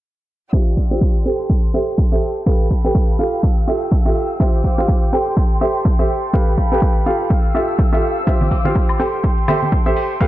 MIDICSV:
0, 0, Header, 1, 4, 480
1, 0, Start_track
1, 0, Tempo, 483871
1, 526, Time_signature, 4, 2, 24, 8
1, 10193, End_track
2, 0, Start_track
2, 0, Title_t, "Violin section"
2, 0, Program_c, 0, 48
2, 524, Note_on_c, 0, 67, 74
2, 524, Note_on_c, 0, 77, 68
2, 524, Note_on_c, 0, 84, 71
2, 524, Note_on_c, 0, 88, 83
2, 525, Note_on_c, 0, 74, 67
2, 1238, Note_off_c, 0, 67, 0
2, 1238, Note_off_c, 0, 74, 0
2, 1238, Note_off_c, 0, 77, 0
2, 1238, Note_off_c, 0, 88, 0
2, 1244, Note_on_c, 0, 69, 77
2, 1245, Note_on_c, 0, 79, 71
2, 2426, Note_off_c, 0, 84, 0
2, 2445, Note_on_c, 0, 77, 75
2, 2445, Note_on_c, 0, 83, 87
2, 3396, Note_off_c, 0, 83, 0
2, 3401, Note_on_c, 0, 88, 89
2, 4334, Note_off_c, 0, 69, 0
2, 4364, Note_on_c, 0, 72, 72
2, 4364, Note_on_c, 0, 86, 69
2, 5059, Note_off_c, 0, 77, 0
2, 5067, Note_off_c, 0, 88, 0
2, 5077, Note_off_c, 0, 86, 0
2, 5078, Note_off_c, 0, 72, 0
2, 5084, Note_on_c, 0, 69, 81
2, 5084, Note_on_c, 0, 84, 83
2, 6273, Note_off_c, 0, 84, 0
2, 6284, Note_on_c, 0, 77, 76
2, 6284, Note_on_c, 0, 83, 86
2, 7235, Note_off_c, 0, 83, 0
2, 7245, Note_on_c, 0, 88, 91
2, 8166, Note_off_c, 0, 79, 0
2, 8174, Note_off_c, 0, 69, 0
2, 8205, Note_on_c, 0, 79, 74
2, 8205, Note_on_c, 0, 86, 71
2, 8206, Note_on_c, 0, 72, 74
2, 8899, Note_off_c, 0, 77, 0
2, 8908, Note_off_c, 0, 88, 0
2, 8918, Note_off_c, 0, 72, 0
2, 8918, Note_off_c, 0, 86, 0
2, 8926, Note_on_c, 0, 69, 76
2, 8926, Note_on_c, 0, 84, 86
2, 10110, Note_off_c, 0, 69, 0
2, 10114, Note_off_c, 0, 84, 0
2, 10121, Note_on_c, 0, 83, 87
2, 10122, Note_on_c, 0, 69, 80
2, 10123, Note_on_c, 0, 77, 76
2, 10193, Note_off_c, 0, 69, 0
2, 10193, Note_off_c, 0, 77, 0
2, 10193, Note_off_c, 0, 79, 0
2, 10193, Note_off_c, 0, 83, 0
2, 10193, End_track
3, 0, Start_track
3, 0, Title_t, "Upright piano"
3, 0, Program_c, 1, 0
3, 525, Note_on_c, 1, 67, 79
3, 525, Note_on_c, 1, 72, 76
3, 526, Note_on_c, 1, 65, 87
3, 526, Note_on_c, 1, 76, 91
3, 699, Note_off_c, 1, 65, 0
3, 699, Note_off_c, 1, 67, 0
3, 699, Note_off_c, 1, 72, 0
3, 699, Note_off_c, 1, 76, 0
3, 904, Note_on_c, 1, 65, 75
3, 904, Note_on_c, 1, 67, 72
3, 904, Note_on_c, 1, 72, 69
3, 904, Note_on_c, 1, 77, 82
3, 1221, Note_off_c, 1, 65, 0
3, 1221, Note_off_c, 1, 67, 0
3, 1221, Note_off_c, 1, 72, 0
3, 1221, Note_off_c, 1, 77, 0
3, 1246, Note_on_c, 1, 67, 77
3, 1246, Note_on_c, 1, 69, 70
3, 1246, Note_on_c, 1, 79, 88
3, 1247, Note_on_c, 1, 72, 72
3, 1701, Note_off_c, 1, 67, 0
3, 1701, Note_off_c, 1, 69, 0
3, 1701, Note_off_c, 1, 72, 0
3, 1701, Note_off_c, 1, 79, 0
3, 1726, Note_on_c, 1, 67, 73
3, 1726, Note_on_c, 1, 69, 65
3, 1726, Note_on_c, 1, 72, 71
3, 1726, Note_on_c, 1, 76, 83
3, 1988, Note_off_c, 1, 67, 0
3, 1988, Note_off_c, 1, 69, 0
3, 1988, Note_off_c, 1, 72, 0
3, 1988, Note_off_c, 1, 76, 0
3, 2102, Note_on_c, 1, 69, 70
3, 2102, Note_on_c, 1, 72, 72
3, 2102, Note_on_c, 1, 76, 85
3, 2103, Note_on_c, 1, 67, 74
3, 2359, Note_off_c, 1, 67, 0
3, 2359, Note_off_c, 1, 69, 0
3, 2359, Note_off_c, 1, 72, 0
3, 2359, Note_off_c, 1, 76, 0
3, 2445, Note_on_c, 1, 67, 87
3, 2445, Note_on_c, 1, 69, 80
3, 2445, Note_on_c, 1, 71, 77
3, 2445, Note_on_c, 1, 77, 99
3, 2618, Note_off_c, 1, 67, 0
3, 2619, Note_off_c, 1, 69, 0
3, 2619, Note_off_c, 1, 71, 0
3, 2619, Note_off_c, 1, 77, 0
3, 2822, Note_on_c, 1, 67, 78
3, 2822, Note_on_c, 1, 69, 72
3, 2822, Note_on_c, 1, 71, 68
3, 2822, Note_on_c, 1, 79, 85
3, 3141, Note_off_c, 1, 67, 0
3, 3141, Note_off_c, 1, 69, 0
3, 3141, Note_off_c, 1, 71, 0
3, 3141, Note_off_c, 1, 79, 0
3, 3164, Note_on_c, 1, 69, 71
3, 3164, Note_on_c, 1, 77, 87
3, 3165, Note_on_c, 1, 65, 79
3, 3165, Note_on_c, 1, 67, 69
3, 3620, Note_off_c, 1, 69, 0
3, 3621, Note_off_c, 1, 65, 0
3, 3621, Note_off_c, 1, 67, 0
3, 3621, Note_off_c, 1, 77, 0
3, 3646, Note_on_c, 1, 65, 73
3, 3646, Note_on_c, 1, 67, 69
3, 3646, Note_on_c, 1, 69, 71
3, 3646, Note_on_c, 1, 76, 83
3, 3908, Note_off_c, 1, 65, 0
3, 3908, Note_off_c, 1, 67, 0
3, 3908, Note_off_c, 1, 69, 0
3, 3908, Note_off_c, 1, 76, 0
3, 4022, Note_on_c, 1, 67, 70
3, 4022, Note_on_c, 1, 69, 73
3, 4022, Note_on_c, 1, 76, 86
3, 4023, Note_on_c, 1, 65, 79
3, 4279, Note_off_c, 1, 67, 0
3, 4279, Note_off_c, 1, 69, 0
3, 4279, Note_off_c, 1, 76, 0
3, 4280, Note_off_c, 1, 65, 0
3, 4365, Note_on_c, 1, 65, 91
3, 4365, Note_on_c, 1, 67, 83
3, 4365, Note_on_c, 1, 72, 77
3, 4365, Note_on_c, 1, 76, 93
3, 4539, Note_off_c, 1, 65, 0
3, 4539, Note_off_c, 1, 67, 0
3, 4539, Note_off_c, 1, 72, 0
3, 4539, Note_off_c, 1, 76, 0
3, 4743, Note_on_c, 1, 65, 77
3, 4743, Note_on_c, 1, 67, 72
3, 4743, Note_on_c, 1, 72, 75
3, 4743, Note_on_c, 1, 77, 86
3, 5061, Note_off_c, 1, 65, 0
3, 5061, Note_off_c, 1, 67, 0
3, 5061, Note_off_c, 1, 72, 0
3, 5061, Note_off_c, 1, 77, 0
3, 5086, Note_on_c, 1, 67, 82
3, 5086, Note_on_c, 1, 69, 75
3, 5086, Note_on_c, 1, 72, 74
3, 5086, Note_on_c, 1, 79, 91
3, 5541, Note_off_c, 1, 67, 0
3, 5541, Note_off_c, 1, 69, 0
3, 5541, Note_off_c, 1, 72, 0
3, 5541, Note_off_c, 1, 79, 0
3, 5566, Note_on_c, 1, 67, 73
3, 5566, Note_on_c, 1, 69, 67
3, 5566, Note_on_c, 1, 76, 86
3, 5567, Note_on_c, 1, 72, 68
3, 5828, Note_off_c, 1, 67, 0
3, 5828, Note_off_c, 1, 69, 0
3, 5828, Note_off_c, 1, 72, 0
3, 5828, Note_off_c, 1, 76, 0
3, 5943, Note_on_c, 1, 67, 77
3, 5943, Note_on_c, 1, 69, 71
3, 5943, Note_on_c, 1, 72, 71
3, 5943, Note_on_c, 1, 76, 81
3, 6199, Note_off_c, 1, 72, 0
3, 6200, Note_off_c, 1, 67, 0
3, 6200, Note_off_c, 1, 69, 0
3, 6200, Note_off_c, 1, 76, 0
3, 6286, Note_on_c, 1, 67, 87
3, 6286, Note_on_c, 1, 69, 78
3, 6286, Note_on_c, 1, 71, 82
3, 6286, Note_on_c, 1, 77, 97
3, 6459, Note_off_c, 1, 67, 0
3, 6459, Note_off_c, 1, 69, 0
3, 6459, Note_off_c, 1, 71, 0
3, 6459, Note_off_c, 1, 77, 0
3, 6663, Note_on_c, 1, 67, 78
3, 6663, Note_on_c, 1, 69, 70
3, 6663, Note_on_c, 1, 71, 73
3, 6664, Note_on_c, 1, 79, 87
3, 6981, Note_off_c, 1, 67, 0
3, 6981, Note_off_c, 1, 69, 0
3, 6981, Note_off_c, 1, 71, 0
3, 6981, Note_off_c, 1, 79, 0
3, 7006, Note_on_c, 1, 65, 80
3, 7006, Note_on_c, 1, 67, 73
3, 7006, Note_on_c, 1, 69, 72
3, 7006, Note_on_c, 1, 77, 90
3, 7461, Note_off_c, 1, 65, 0
3, 7461, Note_off_c, 1, 67, 0
3, 7461, Note_off_c, 1, 69, 0
3, 7461, Note_off_c, 1, 77, 0
3, 7485, Note_on_c, 1, 65, 76
3, 7486, Note_on_c, 1, 67, 67
3, 7486, Note_on_c, 1, 69, 70
3, 7486, Note_on_c, 1, 76, 81
3, 7748, Note_off_c, 1, 65, 0
3, 7748, Note_off_c, 1, 67, 0
3, 7748, Note_off_c, 1, 69, 0
3, 7748, Note_off_c, 1, 76, 0
3, 7862, Note_on_c, 1, 65, 77
3, 7862, Note_on_c, 1, 67, 71
3, 7862, Note_on_c, 1, 69, 70
3, 7862, Note_on_c, 1, 76, 86
3, 8119, Note_off_c, 1, 65, 0
3, 8119, Note_off_c, 1, 67, 0
3, 8119, Note_off_c, 1, 69, 0
3, 8119, Note_off_c, 1, 76, 0
3, 8204, Note_on_c, 1, 65, 86
3, 8204, Note_on_c, 1, 67, 78
3, 8204, Note_on_c, 1, 72, 84
3, 8204, Note_on_c, 1, 76, 98
3, 8378, Note_off_c, 1, 65, 0
3, 8378, Note_off_c, 1, 67, 0
3, 8378, Note_off_c, 1, 72, 0
3, 8378, Note_off_c, 1, 76, 0
3, 8582, Note_on_c, 1, 72, 69
3, 8582, Note_on_c, 1, 77, 86
3, 8583, Note_on_c, 1, 65, 77
3, 8583, Note_on_c, 1, 67, 69
3, 8901, Note_off_c, 1, 65, 0
3, 8901, Note_off_c, 1, 67, 0
3, 8901, Note_off_c, 1, 72, 0
3, 8901, Note_off_c, 1, 77, 0
3, 8924, Note_on_c, 1, 67, 80
3, 8924, Note_on_c, 1, 69, 72
3, 8924, Note_on_c, 1, 72, 70
3, 8924, Note_on_c, 1, 79, 89
3, 9380, Note_off_c, 1, 67, 0
3, 9380, Note_off_c, 1, 69, 0
3, 9380, Note_off_c, 1, 72, 0
3, 9380, Note_off_c, 1, 79, 0
3, 9405, Note_on_c, 1, 67, 75
3, 9405, Note_on_c, 1, 69, 69
3, 9405, Note_on_c, 1, 72, 70
3, 9405, Note_on_c, 1, 76, 86
3, 9667, Note_off_c, 1, 67, 0
3, 9667, Note_off_c, 1, 76, 0
3, 9668, Note_off_c, 1, 69, 0
3, 9668, Note_off_c, 1, 72, 0
3, 9781, Note_on_c, 1, 67, 80
3, 9781, Note_on_c, 1, 69, 71
3, 9781, Note_on_c, 1, 72, 72
3, 9781, Note_on_c, 1, 76, 87
3, 10039, Note_off_c, 1, 67, 0
3, 10039, Note_off_c, 1, 69, 0
3, 10039, Note_off_c, 1, 72, 0
3, 10039, Note_off_c, 1, 76, 0
3, 10123, Note_on_c, 1, 77, 95
3, 10124, Note_on_c, 1, 67, 87
3, 10124, Note_on_c, 1, 69, 85
3, 10124, Note_on_c, 1, 71, 81
3, 10193, Note_off_c, 1, 67, 0
3, 10193, Note_off_c, 1, 69, 0
3, 10193, Note_off_c, 1, 71, 0
3, 10193, Note_off_c, 1, 77, 0
3, 10193, End_track
4, 0, Start_track
4, 0, Title_t, "Drums"
4, 525, Note_on_c, 9, 36, 117
4, 624, Note_off_c, 9, 36, 0
4, 765, Note_on_c, 9, 36, 59
4, 864, Note_off_c, 9, 36, 0
4, 1005, Note_on_c, 9, 36, 113
4, 1104, Note_off_c, 9, 36, 0
4, 1485, Note_on_c, 9, 36, 106
4, 1584, Note_off_c, 9, 36, 0
4, 1964, Note_on_c, 9, 36, 114
4, 2063, Note_off_c, 9, 36, 0
4, 2445, Note_on_c, 9, 36, 118
4, 2544, Note_off_c, 9, 36, 0
4, 2685, Note_on_c, 9, 36, 61
4, 2784, Note_off_c, 9, 36, 0
4, 2925, Note_on_c, 9, 36, 116
4, 3024, Note_off_c, 9, 36, 0
4, 3405, Note_on_c, 9, 36, 116
4, 3504, Note_off_c, 9, 36, 0
4, 3885, Note_on_c, 9, 36, 122
4, 3984, Note_off_c, 9, 36, 0
4, 4365, Note_on_c, 9, 36, 122
4, 4464, Note_off_c, 9, 36, 0
4, 4605, Note_on_c, 9, 36, 63
4, 4704, Note_off_c, 9, 36, 0
4, 4845, Note_on_c, 9, 36, 116
4, 4944, Note_off_c, 9, 36, 0
4, 4984, Note_on_c, 9, 42, 49
4, 5083, Note_off_c, 9, 42, 0
4, 5325, Note_on_c, 9, 36, 115
4, 5325, Note_on_c, 9, 42, 77
4, 5424, Note_off_c, 9, 36, 0
4, 5425, Note_off_c, 9, 42, 0
4, 5464, Note_on_c, 9, 42, 48
4, 5563, Note_off_c, 9, 42, 0
4, 5805, Note_on_c, 9, 36, 119
4, 5806, Note_on_c, 9, 42, 71
4, 5904, Note_off_c, 9, 36, 0
4, 5905, Note_off_c, 9, 42, 0
4, 5943, Note_on_c, 9, 42, 47
4, 6042, Note_off_c, 9, 42, 0
4, 6285, Note_on_c, 9, 36, 126
4, 6285, Note_on_c, 9, 42, 73
4, 6384, Note_off_c, 9, 36, 0
4, 6384, Note_off_c, 9, 42, 0
4, 6423, Note_on_c, 9, 42, 49
4, 6523, Note_off_c, 9, 42, 0
4, 6524, Note_on_c, 9, 36, 62
4, 6623, Note_off_c, 9, 36, 0
4, 6764, Note_on_c, 9, 36, 111
4, 6765, Note_on_c, 9, 42, 73
4, 6864, Note_off_c, 9, 36, 0
4, 6865, Note_off_c, 9, 42, 0
4, 6903, Note_on_c, 9, 42, 46
4, 7002, Note_off_c, 9, 42, 0
4, 7244, Note_on_c, 9, 36, 109
4, 7245, Note_on_c, 9, 42, 72
4, 7343, Note_off_c, 9, 36, 0
4, 7344, Note_off_c, 9, 42, 0
4, 7383, Note_on_c, 9, 42, 48
4, 7482, Note_off_c, 9, 42, 0
4, 7724, Note_on_c, 9, 36, 117
4, 7725, Note_on_c, 9, 42, 70
4, 7823, Note_off_c, 9, 36, 0
4, 7824, Note_off_c, 9, 42, 0
4, 7863, Note_on_c, 9, 42, 48
4, 7962, Note_off_c, 9, 42, 0
4, 8204, Note_on_c, 9, 36, 122
4, 8205, Note_on_c, 9, 42, 72
4, 8208, Note_on_c, 9, 54, 47
4, 8303, Note_off_c, 9, 36, 0
4, 8304, Note_off_c, 9, 42, 0
4, 8307, Note_off_c, 9, 54, 0
4, 8340, Note_on_c, 9, 54, 24
4, 8342, Note_on_c, 9, 42, 50
4, 8343, Note_on_c, 9, 63, 80
4, 8440, Note_off_c, 9, 54, 0
4, 8441, Note_off_c, 9, 42, 0
4, 8442, Note_off_c, 9, 63, 0
4, 8444, Note_on_c, 9, 36, 60
4, 8444, Note_on_c, 9, 46, 97
4, 8448, Note_on_c, 9, 54, 77
4, 8543, Note_off_c, 9, 36, 0
4, 8543, Note_off_c, 9, 46, 0
4, 8547, Note_off_c, 9, 54, 0
4, 8577, Note_on_c, 9, 54, 38
4, 8578, Note_on_c, 9, 63, 80
4, 8676, Note_off_c, 9, 54, 0
4, 8677, Note_off_c, 9, 63, 0
4, 8684, Note_on_c, 9, 36, 114
4, 8684, Note_on_c, 9, 42, 73
4, 8692, Note_on_c, 9, 54, 46
4, 8783, Note_off_c, 9, 36, 0
4, 8783, Note_off_c, 9, 42, 0
4, 8792, Note_off_c, 9, 54, 0
4, 8821, Note_on_c, 9, 42, 49
4, 8821, Note_on_c, 9, 54, 25
4, 8821, Note_on_c, 9, 76, 65
4, 8920, Note_off_c, 9, 42, 0
4, 8920, Note_off_c, 9, 76, 0
4, 8921, Note_off_c, 9, 54, 0
4, 8924, Note_on_c, 9, 46, 93
4, 8926, Note_on_c, 9, 54, 93
4, 9023, Note_off_c, 9, 46, 0
4, 9025, Note_off_c, 9, 54, 0
4, 9055, Note_on_c, 9, 54, 38
4, 9155, Note_off_c, 9, 54, 0
4, 9164, Note_on_c, 9, 36, 110
4, 9164, Note_on_c, 9, 42, 74
4, 9164, Note_on_c, 9, 54, 50
4, 9263, Note_off_c, 9, 36, 0
4, 9263, Note_off_c, 9, 42, 0
4, 9263, Note_off_c, 9, 54, 0
4, 9303, Note_on_c, 9, 42, 48
4, 9304, Note_on_c, 9, 54, 25
4, 9402, Note_off_c, 9, 42, 0
4, 9404, Note_off_c, 9, 54, 0
4, 9405, Note_on_c, 9, 46, 102
4, 9405, Note_on_c, 9, 76, 67
4, 9407, Note_on_c, 9, 54, 94
4, 9408, Note_on_c, 9, 63, 88
4, 9504, Note_off_c, 9, 46, 0
4, 9504, Note_off_c, 9, 76, 0
4, 9506, Note_off_c, 9, 54, 0
4, 9508, Note_off_c, 9, 63, 0
4, 9544, Note_on_c, 9, 54, 39
4, 9549, Note_on_c, 9, 63, 70
4, 9643, Note_off_c, 9, 54, 0
4, 9644, Note_on_c, 9, 36, 111
4, 9644, Note_on_c, 9, 42, 70
4, 9646, Note_on_c, 9, 54, 52
4, 9648, Note_off_c, 9, 63, 0
4, 9743, Note_off_c, 9, 36, 0
4, 9744, Note_off_c, 9, 42, 0
4, 9745, Note_off_c, 9, 54, 0
4, 9780, Note_on_c, 9, 54, 26
4, 9781, Note_on_c, 9, 42, 48
4, 9879, Note_off_c, 9, 54, 0
4, 9881, Note_off_c, 9, 42, 0
4, 9882, Note_on_c, 9, 54, 90
4, 9884, Note_on_c, 9, 46, 90
4, 9981, Note_off_c, 9, 54, 0
4, 9983, Note_off_c, 9, 46, 0
4, 10025, Note_on_c, 9, 54, 36
4, 10125, Note_off_c, 9, 54, 0
4, 10125, Note_on_c, 9, 36, 113
4, 10125, Note_on_c, 9, 42, 75
4, 10131, Note_on_c, 9, 54, 44
4, 10193, Note_off_c, 9, 36, 0
4, 10193, Note_off_c, 9, 42, 0
4, 10193, Note_off_c, 9, 54, 0
4, 10193, End_track
0, 0, End_of_file